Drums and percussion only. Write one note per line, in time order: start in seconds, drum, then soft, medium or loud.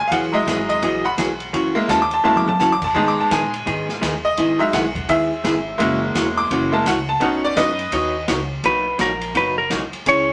0.11 kick soft
0.11 ride medium
0.47 kick soft
0.47 snare medium
0.47 hi-hat pedal medium
0.47 ride medium
0.69 ride medium
0.82 kick soft
0.82 ride medium
1.18 kick soft
1.18 snare medium
1.18 hi-hat pedal medium
1.18 ride medium
1.40 ride soft
1.53 kick soft
1.53 ride medium
1.89 kick soft
1.89 snare medium
1.89 hi-hat pedal medium
1.89 ride medium
2.11 ride soft
2.36 high tom medium
2.48 high tom medium
2.59 snare medium
2.59 hi-hat pedal medium
2.82 kick medium
2.82 crash medium
2.95 kick soft
3.31 kick soft
3.31 snare medium
3.31 hi-hat pedal medium
3.31 ride medium
3.54 ride medium
3.67 kick soft
3.67 ride medium
3.89 snare soft
4.02 kick soft
4.02 snare medium
4.02 hi-hat pedal medium
4.02 ride medium
4.37 kick soft
4.37 ride medium
4.73 kick soft
4.73 snare medium
4.73 hi-hat pedal medium
4.73 ride medium
4.95 kick medium
4.95 ride medium
5.09 kick soft
5.09 ride medium
5.44 kick soft
5.44 snare medium
5.44 hi-hat pedal medium
5.44 ride medium
5.79 kick soft
5.79 ride medium
6.15 kick soft
6.15 snare medium
6.15 hi-hat pedal medium
6.15 ride medium
6.50 kick soft
6.50 ride medium
6.86 kick soft
6.86 snare medium
6.86 hi-hat pedal medium
6.86 ride medium
7.21 kick soft
7.21 ride medium
7.57 kick soft
7.57 snare medium
7.57 hi-hat pedal medium
7.57 ride medium
7.79 ride medium
7.92 kick soft
7.92 ride medium
8.28 kick soft
8.28 snare medium
8.28 hi-hat pedal medium
8.28 ride medium
8.63 kick soft
8.63 ride medium
8.99 kick soft
8.99 snare medium
8.99 hi-hat pedal medium
8.99 ride medium
9.21 ride medium
9.35 kick soft
9.35 ride medium
9.70 kick soft
9.70 snare medium
9.70 hi-hat pedal medium
9.70 ride medium
9.93 ride soft
10.06 kick soft
10.06 ride medium